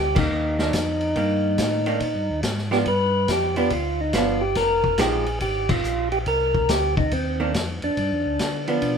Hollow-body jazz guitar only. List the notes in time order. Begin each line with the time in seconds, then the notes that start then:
0.15 D#3 A#3
0.59 D#3 A#3 D4
1.16 D#3 A#3
1.86 D#3 A#3 D4
2.71 F3 B3 D4
3.57 F3 B3 D4
4.14 F3 B3 D4
4.99 F3 G#3 D#4 G4
7.40 D#3 A#3 D4
8.68 F3 B3 D4